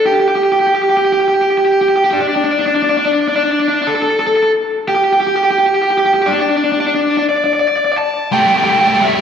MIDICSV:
0, 0, Header, 1, 3, 480
1, 0, Start_track
1, 0, Tempo, 689655
1, 28, Time_signature, 6, 3, 24, 8
1, 6410, End_track
2, 0, Start_track
2, 0, Title_t, "Overdriven electric guitar"
2, 0, Program_c, 0, 29
2, 40, Note_on_c, 0, 67, 82
2, 93, Note_off_c, 0, 67, 0
2, 98, Note_on_c, 0, 67, 52
2, 134, Note_off_c, 0, 67, 0
2, 137, Note_on_c, 0, 67, 62
2, 190, Note_off_c, 0, 67, 0
2, 193, Note_on_c, 0, 67, 56
2, 244, Note_off_c, 0, 67, 0
2, 247, Note_on_c, 0, 67, 69
2, 299, Note_off_c, 0, 67, 0
2, 302, Note_on_c, 0, 67, 59
2, 355, Note_off_c, 0, 67, 0
2, 361, Note_on_c, 0, 67, 68
2, 414, Note_off_c, 0, 67, 0
2, 417, Note_on_c, 0, 67, 61
2, 463, Note_off_c, 0, 67, 0
2, 466, Note_on_c, 0, 67, 74
2, 518, Note_off_c, 0, 67, 0
2, 522, Note_on_c, 0, 67, 65
2, 568, Note_off_c, 0, 67, 0
2, 570, Note_on_c, 0, 67, 75
2, 620, Note_off_c, 0, 67, 0
2, 623, Note_on_c, 0, 67, 60
2, 672, Note_off_c, 0, 67, 0
2, 675, Note_on_c, 0, 67, 69
2, 728, Note_off_c, 0, 67, 0
2, 730, Note_on_c, 0, 67, 64
2, 780, Note_off_c, 0, 67, 0
2, 783, Note_on_c, 0, 67, 74
2, 833, Note_off_c, 0, 67, 0
2, 836, Note_on_c, 0, 67, 66
2, 887, Note_off_c, 0, 67, 0
2, 890, Note_on_c, 0, 67, 72
2, 933, Note_off_c, 0, 67, 0
2, 936, Note_on_c, 0, 67, 58
2, 981, Note_off_c, 0, 67, 0
2, 984, Note_on_c, 0, 67, 69
2, 1037, Note_off_c, 0, 67, 0
2, 1046, Note_on_c, 0, 67, 58
2, 1094, Note_off_c, 0, 67, 0
2, 1096, Note_on_c, 0, 67, 71
2, 1145, Note_off_c, 0, 67, 0
2, 1148, Note_on_c, 0, 67, 58
2, 1193, Note_off_c, 0, 67, 0
2, 1196, Note_on_c, 0, 67, 66
2, 1249, Note_off_c, 0, 67, 0
2, 1261, Note_on_c, 0, 67, 57
2, 1309, Note_off_c, 0, 67, 0
2, 1312, Note_on_c, 0, 67, 68
2, 1360, Note_off_c, 0, 67, 0
2, 1363, Note_on_c, 0, 67, 58
2, 1416, Note_off_c, 0, 67, 0
2, 1422, Note_on_c, 0, 67, 67
2, 1464, Note_off_c, 0, 67, 0
2, 1467, Note_on_c, 0, 67, 52
2, 1482, Note_on_c, 0, 62, 68
2, 1520, Note_off_c, 0, 67, 0
2, 1530, Note_off_c, 0, 62, 0
2, 1533, Note_on_c, 0, 62, 48
2, 1580, Note_off_c, 0, 62, 0
2, 1583, Note_on_c, 0, 62, 62
2, 1637, Note_off_c, 0, 62, 0
2, 1640, Note_on_c, 0, 62, 53
2, 1694, Note_off_c, 0, 62, 0
2, 1698, Note_on_c, 0, 62, 64
2, 1747, Note_off_c, 0, 62, 0
2, 1750, Note_on_c, 0, 62, 57
2, 1801, Note_off_c, 0, 62, 0
2, 1803, Note_on_c, 0, 62, 67
2, 1849, Note_off_c, 0, 62, 0
2, 1852, Note_on_c, 0, 62, 58
2, 1906, Note_off_c, 0, 62, 0
2, 1912, Note_on_c, 0, 62, 63
2, 1962, Note_off_c, 0, 62, 0
2, 1965, Note_on_c, 0, 62, 58
2, 2010, Note_off_c, 0, 62, 0
2, 2013, Note_on_c, 0, 62, 68
2, 2066, Note_off_c, 0, 62, 0
2, 2069, Note_on_c, 0, 62, 56
2, 2123, Note_off_c, 0, 62, 0
2, 2127, Note_on_c, 0, 62, 69
2, 2172, Note_off_c, 0, 62, 0
2, 2174, Note_on_c, 0, 62, 59
2, 2228, Note_off_c, 0, 62, 0
2, 2231, Note_on_c, 0, 62, 63
2, 2277, Note_off_c, 0, 62, 0
2, 2280, Note_on_c, 0, 62, 55
2, 2334, Note_off_c, 0, 62, 0
2, 2337, Note_on_c, 0, 62, 65
2, 2387, Note_off_c, 0, 62, 0
2, 2390, Note_on_c, 0, 62, 55
2, 2441, Note_off_c, 0, 62, 0
2, 2444, Note_on_c, 0, 62, 66
2, 2498, Note_off_c, 0, 62, 0
2, 2506, Note_on_c, 0, 62, 56
2, 2559, Note_off_c, 0, 62, 0
2, 2562, Note_on_c, 0, 62, 61
2, 2602, Note_off_c, 0, 62, 0
2, 2604, Note_on_c, 0, 62, 54
2, 2655, Note_off_c, 0, 62, 0
2, 2658, Note_on_c, 0, 62, 61
2, 2694, Note_on_c, 0, 69, 85
2, 2711, Note_off_c, 0, 62, 0
2, 2746, Note_off_c, 0, 69, 0
2, 2749, Note_on_c, 0, 69, 57
2, 2796, Note_off_c, 0, 69, 0
2, 2799, Note_on_c, 0, 69, 70
2, 2853, Note_off_c, 0, 69, 0
2, 2856, Note_on_c, 0, 69, 63
2, 2911, Note_off_c, 0, 69, 0
2, 2919, Note_on_c, 0, 69, 75
2, 2967, Note_off_c, 0, 69, 0
2, 2970, Note_on_c, 0, 69, 68
2, 3025, Note_off_c, 0, 69, 0
2, 3032, Note_on_c, 0, 69, 68
2, 3078, Note_off_c, 0, 69, 0
2, 3081, Note_on_c, 0, 69, 56
2, 3136, Note_off_c, 0, 69, 0
2, 3395, Note_on_c, 0, 67, 97
2, 3441, Note_off_c, 0, 67, 0
2, 3444, Note_on_c, 0, 67, 72
2, 3499, Note_off_c, 0, 67, 0
2, 3506, Note_on_c, 0, 67, 78
2, 3561, Note_off_c, 0, 67, 0
2, 3568, Note_on_c, 0, 67, 69
2, 3619, Note_off_c, 0, 67, 0
2, 3621, Note_on_c, 0, 67, 82
2, 3664, Note_off_c, 0, 67, 0
2, 3666, Note_on_c, 0, 67, 79
2, 3721, Note_off_c, 0, 67, 0
2, 3729, Note_on_c, 0, 67, 83
2, 3781, Note_off_c, 0, 67, 0
2, 3783, Note_on_c, 0, 67, 79
2, 3830, Note_off_c, 0, 67, 0
2, 3833, Note_on_c, 0, 67, 93
2, 3884, Note_off_c, 0, 67, 0
2, 3887, Note_on_c, 0, 67, 74
2, 3939, Note_off_c, 0, 67, 0
2, 3942, Note_on_c, 0, 67, 84
2, 3994, Note_off_c, 0, 67, 0
2, 3997, Note_on_c, 0, 67, 74
2, 4045, Note_off_c, 0, 67, 0
2, 4048, Note_on_c, 0, 67, 81
2, 4103, Note_off_c, 0, 67, 0
2, 4110, Note_on_c, 0, 67, 72
2, 4156, Note_off_c, 0, 67, 0
2, 4159, Note_on_c, 0, 67, 85
2, 4212, Note_off_c, 0, 67, 0
2, 4215, Note_on_c, 0, 67, 69
2, 4269, Note_off_c, 0, 67, 0
2, 4272, Note_on_c, 0, 67, 85
2, 4324, Note_off_c, 0, 67, 0
2, 4327, Note_on_c, 0, 67, 71
2, 4357, Note_on_c, 0, 62, 85
2, 4382, Note_off_c, 0, 67, 0
2, 4405, Note_off_c, 0, 62, 0
2, 4408, Note_on_c, 0, 62, 62
2, 4453, Note_off_c, 0, 62, 0
2, 4456, Note_on_c, 0, 62, 70
2, 4509, Note_off_c, 0, 62, 0
2, 4518, Note_on_c, 0, 62, 67
2, 4567, Note_off_c, 0, 62, 0
2, 4570, Note_on_c, 0, 62, 80
2, 4618, Note_off_c, 0, 62, 0
2, 4620, Note_on_c, 0, 62, 65
2, 4673, Note_off_c, 0, 62, 0
2, 4675, Note_on_c, 0, 62, 78
2, 4728, Note_off_c, 0, 62, 0
2, 4734, Note_on_c, 0, 62, 69
2, 4776, Note_off_c, 0, 62, 0
2, 4779, Note_on_c, 0, 62, 80
2, 4831, Note_off_c, 0, 62, 0
2, 4834, Note_on_c, 0, 62, 65
2, 4878, Note_off_c, 0, 62, 0
2, 4881, Note_on_c, 0, 62, 76
2, 4934, Note_off_c, 0, 62, 0
2, 4940, Note_on_c, 0, 62, 61
2, 4989, Note_off_c, 0, 62, 0
2, 4992, Note_on_c, 0, 62, 70
2, 5045, Note_off_c, 0, 62, 0
2, 5073, Note_on_c, 0, 74, 74
2, 5122, Note_off_c, 0, 74, 0
2, 5124, Note_on_c, 0, 74, 59
2, 5175, Note_off_c, 0, 74, 0
2, 5178, Note_on_c, 0, 74, 67
2, 5233, Note_off_c, 0, 74, 0
2, 5242, Note_on_c, 0, 74, 62
2, 5283, Note_off_c, 0, 74, 0
2, 5285, Note_on_c, 0, 74, 66
2, 5339, Note_off_c, 0, 74, 0
2, 5342, Note_on_c, 0, 74, 58
2, 5397, Note_off_c, 0, 74, 0
2, 5401, Note_on_c, 0, 74, 64
2, 5456, Note_off_c, 0, 74, 0
2, 5460, Note_on_c, 0, 74, 57
2, 5508, Note_off_c, 0, 74, 0
2, 5511, Note_on_c, 0, 74, 59
2, 5548, Note_off_c, 0, 74, 0
2, 5551, Note_on_c, 0, 81, 83
2, 5773, Note_off_c, 0, 81, 0
2, 5792, Note_on_c, 0, 79, 77
2, 5843, Note_off_c, 0, 79, 0
2, 5846, Note_on_c, 0, 79, 54
2, 5892, Note_off_c, 0, 79, 0
2, 5895, Note_on_c, 0, 79, 63
2, 5949, Note_off_c, 0, 79, 0
2, 5957, Note_on_c, 0, 79, 54
2, 6011, Note_off_c, 0, 79, 0
2, 6014, Note_on_c, 0, 79, 64
2, 6062, Note_off_c, 0, 79, 0
2, 6065, Note_on_c, 0, 79, 57
2, 6119, Note_off_c, 0, 79, 0
2, 6122, Note_on_c, 0, 79, 64
2, 6176, Note_off_c, 0, 79, 0
2, 6184, Note_on_c, 0, 79, 54
2, 6233, Note_off_c, 0, 79, 0
2, 6235, Note_on_c, 0, 79, 58
2, 6277, Note_on_c, 0, 76, 72
2, 6290, Note_off_c, 0, 79, 0
2, 6410, Note_off_c, 0, 76, 0
2, 6410, End_track
3, 0, Start_track
3, 0, Title_t, "Distorted electric guitar"
3, 0, Program_c, 1, 30
3, 5788, Note_on_c, 1, 55, 64
3, 5792, Note_on_c, 1, 57, 81
3, 5835, Note_off_c, 1, 55, 0
3, 5838, Note_on_c, 1, 55, 44
3, 5843, Note_off_c, 1, 57, 0
3, 5846, Note_on_c, 1, 57, 54
3, 5884, Note_off_c, 1, 55, 0
3, 5887, Note_on_c, 1, 55, 54
3, 5893, Note_off_c, 1, 57, 0
3, 5896, Note_on_c, 1, 57, 66
3, 5938, Note_off_c, 1, 55, 0
3, 5941, Note_on_c, 1, 55, 45
3, 5943, Note_off_c, 1, 57, 0
3, 5946, Note_on_c, 1, 57, 56
3, 5994, Note_off_c, 1, 55, 0
3, 5999, Note_off_c, 1, 57, 0
3, 6002, Note_on_c, 1, 55, 58
3, 6003, Note_on_c, 1, 57, 62
3, 6046, Note_off_c, 1, 55, 0
3, 6049, Note_on_c, 1, 55, 46
3, 6051, Note_off_c, 1, 57, 0
3, 6054, Note_on_c, 1, 57, 57
3, 6102, Note_off_c, 1, 55, 0
3, 6106, Note_off_c, 1, 57, 0
3, 6109, Note_on_c, 1, 57, 64
3, 6114, Note_on_c, 1, 55, 52
3, 6154, Note_off_c, 1, 57, 0
3, 6157, Note_on_c, 1, 57, 60
3, 6163, Note_off_c, 1, 55, 0
3, 6166, Note_on_c, 1, 55, 49
3, 6210, Note_off_c, 1, 57, 0
3, 6217, Note_off_c, 1, 55, 0
3, 6217, Note_on_c, 1, 57, 71
3, 6220, Note_on_c, 1, 55, 53
3, 6262, Note_off_c, 1, 55, 0
3, 6265, Note_on_c, 1, 55, 50
3, 6267, Note_off_c, 1, 57, 0
3, 6270, Note_on_c, 1, 57, 61
3, 6308, Note_off_c, 1, 55, 0
3, 6310, Note_on_c, 1, 55, 53
3, 6319, Note_off_c, 1, 57, 0
3, 6322, Note_on_c, 1, 57, 73
3, 6364, Note_off_c, 1, 55, 0
3, 6368, Note_off_c, 1, 57, 0
3, 6371, Note_on_c, 1, 55, 47
3, 6371, Note_on_c, 1, 57, 61
3, 6410, Note_off_c, 1, 55, 0
3, 6410, Note_off_c, 1, 57, 0
3, 6410, End_track
0, 0, End_of_file